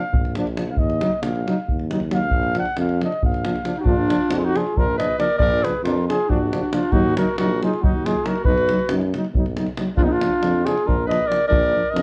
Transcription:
Already playing: F5
0.13 A#1, davul low
0.25 davul high
0.35 F3 D4, davul high
0.47 davul high
0.57 F3 D4, davul high
0.70 F5
0.76 D#2 D#5, davul low
0.90 davul high
1.01 F#3 D#4, davul high
1.22 A#1 F5, davul high
1.36 davul high
1.46 F#3 D#4, davul high
1.68 D#2, davul low
1.79 davul high
1.91 F#3 D#4, davul high
2.00 davul high
2.10 F#3 D#4 F5, davul high
2.31 A#1, davul low
2.43 davul high
2.55 F3 D4 F#5, davul high
2.65 davul high
2.77 F2 F5, davul high
2.89 davul high
3.01 F3 D4 D#5, davul high
3.12 davul high
3.22 A#1 F5, davul low
3.34 davul high
3.45 F3 D4, davul high
3.56 davul high
3.65 F3 D4, davul high
3.76 D#4, davul high
3.80 D4 F#4
3.84 A#1 F3 D4 F4, davul low
4.09 F3 D4, davul high
4.30 F2 F3 D4 F#4, davul high
4.38 F4 G#4
4.44 D#4 F#4
4.54 F3 D4 F4 G#4, davul high
4.67 davul high
4.76 A#1 F3 D4 F4 A#4, davul low
4.97 F3 D4 B4 D#5, davul high
5.19 F3 D4 A#4 D5, davul high
5.30 davul high
5.38 A#1 F3 D4 A#4 D5, davul low
5.63 F3 D4 G#4 B4, davul high
5.84 F2 F3 D4 F4 A#4, davul high
6.07 F3 D4 F4 G#4, davul high
6.20 davul high
6.28 A#1 F3 D4 F#4, davul low
6.52 F3 D4, davul high
6.73 F3 D4 F4, davul high
6.83 davul high
6.92 D#2 F#3 D#4 F#4, davul low
7.16 F#3 D#4 F#4 A#4, davul high
7.38 A#1 F#3 D#4 F#4 A#4, davul high
7.62 F#3 D#4 F4 G#4, davul high
7.74 davul high
7.81 D#2 F#3 D#4 F#4, davul low
8.05 F#3 D#4 F4 G#4, davul high
8.25 F#3 D#4 F#4 A#4, davul high
8.36 davul high
8.45 B1 F#3 D#4 F#4 B4, davul low
8.58 davul high
8.69 F#3 D#4, davul high
8.79 davul high
8.89 F#2 F#3 D#4, davul high
9.01 davul high
9.14 F#3 D#4, davul high
9.24 davul high
9.33 B1 F#3 D#4, davul low
9.46 davul high
9.57 F#3 D#4, davul high
9.66 davul high
9.77 F#3 D#4, davul high
9.95 A#1 F3 D4 F4, davul low
10.04 B3 D#4
10.10 D4 F4
10.21 F3 D4, davul high
10.41 F2 F3 D4, davul high
10.63 F3 D4 F4 G#4, davul high
10.78 davul high
10.84 A#1 F3 D4 F4 A#4
10.88 davul low
11.07 F3 D4 B4 D#5
11.11 davul high
11.26 F3 D4 A#4 D5
11.32 davul high
11.42 davul high
11.48 A#1 F3 D4 A#4 D5
11.52 davul low
11.73 F3 D4
11.90 F2 D4 A#4 D#5
11.94 F3, davul high

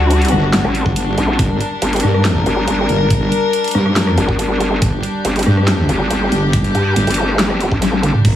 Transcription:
Already playing: D2 G3 D4 F#4
0.11 closed hi-hat
0.22 closed hi-hat
0.25 closed hi-hat
0.28 G1, cross-stick, closed hi-hat
0.43 cross-stick
0.53 G1, snare, clap, closed hi-hat
0.64 A1, cross-stick
0.75 closed hi-hat
0.86 G1, kick
0.96 closed hi-hat
1.18 A#1, closed hi-hat
1.39 G1 A#4, kick, closed hi-hat
1.61 closed hi-hat
1.82 G1, closed hi-hat
1.93 closed hi-hat
1.96 closed hi-hat
2.00 G2, cross-stick, closed hi-hat
2.14 cross-stick
2.25 snare, clap, closed hi-hat
2.46 G1, closed hi-hat
2.68 G1, closed hi-hat
2.89 G1, closed hi-hat
3.10 kick, closed hi-hat
3.32 closed hi-hat
3.53 closed hi-hat
3.64 closed hi-hat
3.68 closed hi-hat
3.71 G2, cross-stick, closed hi-hat
3.86 cross-stick
3.96 snare, clap, closed hi-hat
4.07 cross-stick
4.18 G1, closed hi-hat
4.29 kick
4.39 G1, closed hi-hat
4.60 closed hi-hat
4.82 G1 G4, kick, closed hi-hat
5.03 closed hi-hat
5.25 G1, closed hi-hat
5.36 closed hi-hat
5.39 closed hi-hat
5.43 G2, cross-stick, closed hi-hat
5.57 cross-stick
5.68 snare, clap, closed hi-hat
5.89 G1, closed hi-hat
6.10 G1, closed hi-hat
6.32 G1, closed hi-hat
6.53 kick, closed hi-hat
6.64 closed hi-hat
6.75 G2, closed hi-hat
6.96 G1, closed hi-hat
7.07 G1, closed hi-hat
7.11 closed hi-hat
7.14 cross-stick, closed hi-hat
7.29 cross-stick
7.39 snare, clap, closed hi-hat
7.50 F#1, cross-stick
7.61 closed hi-hat
7.72 A1, kick
7.82 snare, closed hi-hat, high tom
7.93 high tom
8.03 closed hi-hat, mid tom
8.14 mid tom
8.25 G1 A#4, kick, closed hi-hat, crash

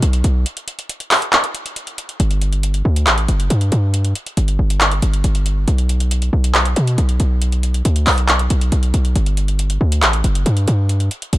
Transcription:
0.02 B1, closed hi-hat
0.13 closed hi-hat
0.24 B1, closed hi-hat
0.46 closed hi-hat
0.57 closed hi-hat
0.68 closed hi-hat
0.79 closed hi-hat
0.89 closed hi-hat
1.00 closed hi-hat
1.11 clap, open hi-hat
1.22 closed hi-hat
1.33 clap, closed hi-hat
1.44 closed hi-hat
1.55 closed hi-hat
1.66 closed hi-hat
1.76 closed hi-hat
1.87 closed hi-hat
1.98 closed hi-hat
2.09 closed hi-hat
2.20 G1, closed hi-hat
2.31 closed hi-hat
2.42 closed hi-hat
2.53 closed hi-hat
2.63 closed hi-hat
2.74 closed hi-hat
2.85 D2
2.96 closed hi-hat
3.07 A1, clap, closed hi-hat
3.18 closed hi-hat
3.28 F#1, closed hi-hat
3.40 closed hi-hat
3.50 G2, closed hi-hat
3.61 closed hi-hat
3.72 G2, closed hi-hat
3.94 closed hi-hat
4.05 closed hi-hat
4.15 closed hi-hat
4.26 closed hi-hat
4.37 G1, closed hi-hat
4.48 closed hi-hat
4.59 G1
4.70 closed hi-hat
4.81 clap, closed hi-hat
4.92 closed hi-hat
5.02 G1, closed hi-hat
5.14 closed hi-hat
5.24 G1, closed hi-hat
5.35 closed hi-hat
5.46 closed hi-hat
5.68 B1, closed hi-hat
5.78 closed hi-hat
5.89 closed hi-hat
6.00 closed hi-hat
6.11 closed hi-hat
6.22 closed hi-hat
6.33 B1
6.44 closed hi-hat
6.55 clap, closed hi-hat
6.65 closed hi-hat
6.76 B2, closed hi-hat
6.87 closed hi-hat
6.98 B1, closed hi-hat
7.09 closed hi-hat
7.20 B1, closed hi-hat
7.42 closed hi-hat
7.52 closed hi-hat
7.63 closed hi-hat
7.74 closed hi-hat
7.85 D2, closed hi-hat
7.96 closed hi-hat
8.06 B1, clap, open hi-hat
8.18 closed hi-hat
8.29 clap, closed hi-hat
8.39 closed hi-hat
8.50 B1, closed hi-hat
8.61 closed hi-hat
8.72 B1, closed hi-hat
8.83 closed hi-hat
8.94 B1, closed hi-hat
9.05 closed hi-hat
9.16 G1, closed hi-hat
9.26 closed hi-hat
9.37 closed hi-hat
9.48 closed hi-hat
9.59 closed hi-hat
9.70 closed hi-hat
9.81 D2
9.92 closed hi-hat
10.02 A1, clap, closed hi-hat
10.13 closed hi-hat
10.24 F#1, closed hi-hat
10.35 closed hi-hat
10.46 G2, closed hi-hat
10.57 closed hi-hat
10.68 G2, closed hi-hat
10.89 closed hi-hat
11.00 closed hi-hat
11.11 closed hi-hat
11.22 closed hi-hat
11.33 G1, closed hi-hat

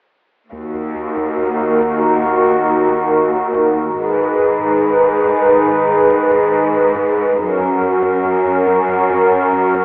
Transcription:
0.52 D#2 D#3 D#4 F#4 A#4
0.74 D#2
0.95 D#2
1.17 D#2
1.38 D#2
1.60 D#2
1.81 D#2
2.02 D#2
2.23 D#2
2.45 D#2
2.67 D#2
2.88 D#2
3.10 D#2
3.32 D#2
3.53 D#2
3.74 D#2
3.95 G#2 D#3 D#4 G#4 B4
4.16 G#2
4.38 G#2
4.59 G#2
4.80 G#2
5.03 G#2
5.24 G#2
5.45 G#2
5.66 G#2
5.88 G#2
6.09 G#2
6.31 G#2
6.53 G#2
6.73 G#2
6.95 G#2
7.16 G#2
7.37 F#2 F#3 C#4 F#4 A#4
7.60 F#2
7.81 F#2
8.02 F#2
8.25 F#2
8.45 F#2
8.67 F#2
8.89 F#2
9.10 F#2
9.31 F#2
9.52 F#2
9.74 F#2

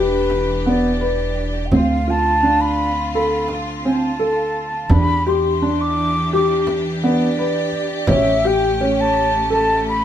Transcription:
Already playing: E1 E3 D4 G4
0.00 B4
0.30 frame drum
0.66 B3 D5
1.01 B4
1.66 G5
1.72 D2 D3 C4 F4 F5, frame drum
2.08 F4 A5
2.43 D4
2.61 B5
3.14 A4 B5, frame drum
3.48 frame drum
3.85 C4 A5
4.19 A4
4.89 E2 E3 D4 G4 B5, frame drum
5.27 G4 C6
5.62 D4
5.81 D6
6.31 G4 D6, frame drum
6.67 frame drum
7.03 B3 D5
7.39 B4
7.72 frame drum
8.07 A1 A3 C#4 E5, frame drum
8.45 G4 G5
8.81 C#4
9.01 A5
9.49 A4 A5, frame drum
9.88 B5

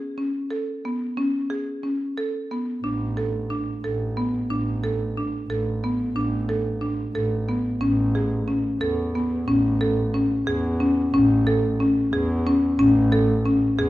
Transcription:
0.18 C#4
0.51 A4
0.85 B3
1.17 C#4
1.50 G#4
1.83 C#4
2.18 A4
2.51 B3
2.83 A1 D4
3.17 A4
3.50 D4
3.82 A1 A4
4.17 B3
4.48 A1 D4
4.84 A4
5.17 D4
5.48 A1 A4
5.84 B3
6.15 A1 D4
6.49 A4
6.81 D4
7.13 A1 A4
7.49 B3
7.81 A1 C#4
8.15 G#4
8.48 C#4
8.80 E2 A4
9.15 B3
9.46 A1 C#4
9.81 A4
10.14 C#4
10.46 E2 G#4
10.80 C#4
11.13 A1 C#4
11.47 A4
11.80 C#4
12.12 E2 G#4
12.47 C#4
12.78 A1 C#4
13.12 A4
13.46 C#4
13.78 E2 G#4

